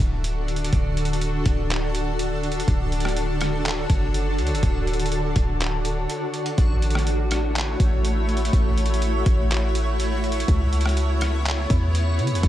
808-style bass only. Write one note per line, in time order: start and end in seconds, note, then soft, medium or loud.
0.00 0.70 D1 loud
0.73 1.43 D1 loud
1.46 2.64 D1 loud
2.68 3.86 D1 loud
3.90 4.40 F#1 loud
4.39 4.52 D2 loud
4.51 4.62 F#1 loud
4.63 5.33 D1 loud
5.36 6.06 D1 loud
6.58 7.76 A1 loud
7.80 8.50 A1 loud
8.53 9.23 A1 loud
9.26 10.44 A1 loud
10.48 11.66 C#2 loud
11.70 12.20 E2 loud
12.19 12.33 C#3 loud
12.31 12.43 E2 loud
12.43 12.48 C#2 loud